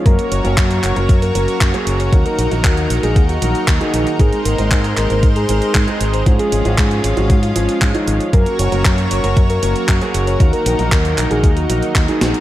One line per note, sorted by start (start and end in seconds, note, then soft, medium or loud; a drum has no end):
0.06 0.16 F#2 loud
0.06 2.10 F#3 medium
0.06 0.41 F#3 medium
0.06 0.41 A#3 medium
0.06 0.41 C#4 medium
0.06 4.15 F#4 medium
0.06 6.22 A#4 medium
0.06 0.26 A#4 loud
0.06 0.41 A#4 medium
0.06 2.11 C#5 medium
0.06 kick loud
0.06 closed hi-hat medium
0.19 closed hi-hat soft
0.32 0.42 F#1 loud
0.32 0.72 C#5 loud
0.32 closed hi-hat medium
0.44 0.55 F#1 medium
0.44 0.93 F#3 medium
0.44 0.93 A#3 medium
0.44 0.93 C#4 medium
0.44 0.93 A#4 loud
0.44 closed hi-hat soft
0.57 0.79 F#2 loud
0.57 kick loud
0.57 clap loud
0.57 closed hi-hat medium
0.71 closed hi-hat soft
0.83 0.94 F#1 loud
0.83 1.14 C#5 loud
0.83 clap medium
0.83 closed hi-hat medium
0.96 1.07 F#1 medium
0.96 1.11 F#3 medium
0.96 1.11 A#3 medium
0.96 1.11 C#4 medium
0.96 1.11 A#4 loud
0.96 closed hi-hat soft
1.09 1.30 F#2 medium
1.09 kick loud
1.09 closed hi-hat medium
1.22 1.62 A#4 loud
1.22 closed hi-hat soft
1.35 1.46 F#1 medium
1.35 1.71 F#3 medium
1.35 1.71 A#3 medium
1.35 1.71 C#4 medium
1.35 1.71 A#4 loud
1.35 closed hi-hat medium
1.48 closed hi-hat soft
1.61 1.71 F#2 medium
1.61 kick loud
1.61 clap loud
1.61 closed hi-hat medium
1.74 2.10 F#3 medium
1.74 2.10 A#3 medium
1.74 2.10 C#4 medium
1.74 2.10 G#4 loud
1.74 closed hi-hat soft
1.87 2.08 F#1 medium
1.87 closed hi-hat medium
2.00 2.20 C#5 medium
2.00 closed hi-hat soft
2.13 2.23 D#2 loud
2.13 4.17 D#3 medium
2.13 2.48 F#3 medium
2.13 2.48 A#3 medium
2.13 6.22 D#4 medium
2.13 2.48 D#4 medium
2.13 2.48 A#4 medium
2.13 kick loud
2.13 closed hi-hat medium
2.26 2.56 A#4 loud
2.26 closed hi-hat soft
2.38 2.49 A#1 loud
2.38 closed hi-hat medium
2.51 2.62 A#1 medium
2.51 3.00 F#3 medium
2.51 3.00 A#3 medium
2.51 3.00 D#4 medium
2.51 3.00 A#4 loud
2.51 closed hi-hat soft
2.64 2.86 D#2 loud
2.64 2.95 A#4 loud
2.64 kick loud
2.64 clap loud
2.64 closed hi-hat medium
2.77 closed hi-hat soft
2.90 3.01 A#1 loud
2.90 closed hi-hat medium
3.03 3.14 A#1 medium
3.03 3.17 F#3 medium
3.03 3.17 A#3 medium
3.03 3.17 D#4 medium
3.03 3.23 G#4 medium
3.03 3.17 A#4 loud
3.03 closed hi-hat soft
3.16 3.37 D#2 medium
3.16 kick loud
3.16 closed hi-hat medium
3.29 3.69 F#4 loud
3.29 closed hi-hat soft
3.42 3.52 A#1 medium
3.42 3.78 F#3 medium
3.42 3.78 A#3 medium
3.42 3.78 D#4 medium
3.42 3.78 A#4 loud
3.42 closed hi-hat medium
3.55 closed hi-hat soft
3.68 3.78 D#2 medium
3.68 kick loud
3.68 clap loud
3.68 closed hi-hat medium
3.81 4.16 F#3 medium
3.81 4.16 A#3 medium
3.81 4.16 D#4 medium
3.81 4.11 D#4 loud
3.81 4.16 G#4 loud
3.81 closed hi-hat soft
3.94 4.04 A#1 medium
3.94 closed hi-hat medium
4.07 closed hi-hat soft
4.19 4.30 G#2 loud
4.19 8.29 G#3 medium
4.19 4.55 G#3 medium
4.19 4.55 C4 medium
4.19 4.55 D#4 medium
4.19 4.40 G#4 loud
4.19 4.55 A#4 medium
4.19 6.24 C5 medium
4.19 kick loud
4.19 closed hi-hat medium
4.33 closed hi-hat soft
4.45 4.56 G#1 loud
4.45 4.86 A#4 loud
4.45 closed hi-hat medium
4.58 4.69 G#1 medium
4.58 5.07 G#3 loud
4.58 5.07 C4 medium
4.58 5.07 D#4 medium
4.58 5.07 A#4 loud
4.58 closed hi-hat soft
4.71 4.92 G#2 loud
4.71 kick loud
4.71 clap loud
4.71 closed hi-hat medium
4.84 closed hi-hat soft
4.97 5.08 G#1 loud
4.97 5.27 A#4 loud
4.97 clap medium
4.97 closed hi-hat medium
5.10 5.21 G#1 medium
5.10 5.24 G#3 medium
5.10 5.24 C4 medium
5.10 5.24 D#4 medium
5.10 5.24 A#4 loud
5.10 closed hi-hat soft
5.23 5.44 G#2 medium
5.23 kick loud
5.23 closed hi-hat medium
5.36 5.76 G#4 loud
5.36 closed hi-hat soft
5.49 5.59 G#1 medium
5.49 5.85 G#3 medium
5.49 5.85 C4 medium
5.49 5.85 D#4 medium
5.49 5.85 A#4 loud
5.49 closed hi-hat medium
5.62 closed hi-hat soft
5.75 5.85 G#2 medium
5.75 kick loud
5.75 clap loud
5.75 closed hi-hat medium
5.88 6.23 G#3 medium
5.88 6.23 C4 medium
5.88 6.23 D#4 medium
5.88 6.23 G#4 loud
5.88 closed hi-hat soft
6.01 6.22 G#1 medium
6.01 closed hi-hat medium
6.14 6.34 C5 medium
6.14 closed hi-hat soft
6.26 6.37 G#2 loud
6.26 6.62 F3 medium
6.26 6.62 G#3 medium
6.26 8.31 C#4 medium
6.26 6.62 C#4 medium
6.26 8.31 F4 medium
6.26 6.62 G#4 medium
6.26 kick loud
6.26 closed hi-hat medium
6.39 6.70 G#4 loud
6.39 closed hi-hat soft
6.52 6.63 G#1 loud
6.52 closed hi-hat medium
6.65 6.76 G#1 medium
6.65 7.14 F3 loud
6.65 7.14 G#3 medium
6.65 7.14 C#4 medium
6.65 7.14 G#4 loud
6.65 closed hi-hat soft
6.78 6.99 G#2 loud
6.78 7.08 G#4 loud
6.78 kick loud
6.78 clap loud
6.78 closed hi-hat medium
6.91 closed hi-hat soft
7.04 7.15 G#1 loud
7.04 closed hi-hat medium
7.17 7.28 G#1 medium
7.17 7.31 F3 medium
7.17 7.31 G#3 medium
7.17 7.31 C#4 medium
7.17 7.37 F#4 medium
7.17 7.31 G#4 loud
7.17 closed hi-hat soft
7.30 7.51 G#2 medium
7.30 kick loud
7.30 closed hi-hat medium
7.43 7.83 F4 loud
7.43 closed hi-hat soft
7.56 7.66 G#1 medium
7.56 7.91 F3 medium
7.56 7.91 G#3 medium
7.56 7.91 C#4 medium
7.56 7.91 G#4 loud
7.56 closed hi-hat medium
7.69 closed hi-hat soft
7.82 7.92 G#2 medium
7.82 kick loud
7.82 clap loud
7.82 closed hi-hat medium
7.95 8.30 F3 medium
7.95 8.30 G#3 medium
7.95 8.30 C#4 medium
7.95 8.25 D#4 loud
7.95 8.30 F4 loud
7.95 closed hi-hat soft
8.07 8.18 G#1 medium
8.07 closed hi-hat medium
8.20 closed hi-hat soft
8.33 8.44 F#2 loud
8.33 8.69 F#3 medium
8.33 10.38 F#3 medium
8.33 8.69 A#3 medium
8.33 8.69 C#4 medium
8.33 12.40 F#4 medium
8.33 8.69 A#4 medium
8.33 12.40 A#4 medium
8.33 8.54 A#4 loud
8.33 10.38 C#5 medium
8.33 kick loud
8.33 closed hi-hat medium
8.46 closed hi-hat soft
8.59 8.70 F#1 loud
8.59 9.00 C#5 loud
8.59 closed hi-hat loud
8.72 8.83 F#1 medium
8.72 9.21 F#3 medium
8.72 9.21 A#3 medium
8.72 9.21 C#4 medium
8.72 9.21 A#4 loud
8.72 closed hi-hat soft
8.85 9.06 F#2 loud
8.85 kick loud
8.85 clap loud
8.85 closed hi-hat medium
8.98 closed hi-hat soft
9.11 9.21 F#1 loud
9.11 9.41 C#5 loud
9.11 closed hi-hat loud
9.24 9.34 F#1 medium
9.24 9.38 F#3 loud
9.24 9.38 A#3 medium
9.24 9.38 C#4 medium
9.24 9.38 A#4 loud
9.24 closed hi-hat soft
9.37 9.58 F#2 medium
9.37 kick loud
9.37 closed hi-hat medium
9.50 9.90 A#4 loud
9.50 closed hi-hat soft
9.63 9.73 F#1 medium
9.63 9.98 F#3 medium
9.63 9.98 A#3 medium
9.63 9.98 C#4 medium
9.63 9.98 A#4 loud
9.63 closed hi-hat loud
9.76 closed hi-hat soft
9.88 9.99 F#2 medium
9.88 kick loud
9.88 clap loud
9.88 closed hi-hat medium
10.01 10.37 F#3 medium
10.01 10.37 A#3 medium
10.01 10.37 C#4 medium
10.01 10.37 G#4 loud
10.01 closed hi-hat soft
10.14 10.36 F#1 medium
10.14 closed hi-hat loud
10.27 10.47 C#5 medium
10.27 closed hi-hat soft
10.40 10.51 D#2 loud
10.40 12.40 D#3 medium
10.40 10.76 F#3 medium
10.40 10.76 A#3 medium
10.40 10.76 D#4 medium
10.40 12.40 D#4 medium
10.40 10.76 A#4 medium
10.40 kick loud
10.40 closed hi-hat medium
10.53 10.83 A#4 loud
10.53 closed hi-hat soft
10.66 10.77 A#1 loud
10.66 closed hi-hat loud
10.79 10.90 A#1 medium
10.79 11.28 F#3 medium
10.79 11.28 A#3 medium
10.79 11.28 D#4 medium
10.79 11.28 A#4 loud
10.79 closed hi-hat soft
10.92 11.13 D#2 loud
10.92 11.22 A#4 medium
10.92 kick loud
10.92 clap loud
10.92 closed hi-hat medium
11.05 closed hi-hat soft
11.18 11.28 A#1 loud
11.18 clap medium
11.18 closed hi-hat loud
11.31 11.41 A#1 medium
11.31 11.45 F#3 medium
11.31 11.45 A#3 medium
11.31 11.45 D#4 medium
11.31 11.51 G#4 medium
11.31 11.45 A#4 loud
11.31 closed hi-hat soft
11.44 11.65 D#2 medium
11.44 kick loud
11.44 closed hi-hat medium
11.57 11.97 F#4 loud
11.57 closed hi-hat soft
11.69 11.80 A#1 medium
11.69 12.05 F#3 medium
11.69 12.05 A#3 medium
11.69 12.05 D#4 medium
11.69 12.05 A#4 medium
11.69 closed hi-hat loud
11.82 closed hi-hat soft
11.95 12.06 D#2 medium
11.95 kick loud
11.95 clap loud
11.95 closed hi-hat medium
12.08 12.40 F#3 medium
12.08 12.40 A#3 medium
12.08 12.39 D#4 loud
12.08 12.40 D#4 medium
12.08 12.40 G#4 loud
12.08 closed hi-hat soft
12.21 12.32 A#1 medium
12.21 snare medium
12.21 closed hi-hat loud
12.34 closed hi-hat soft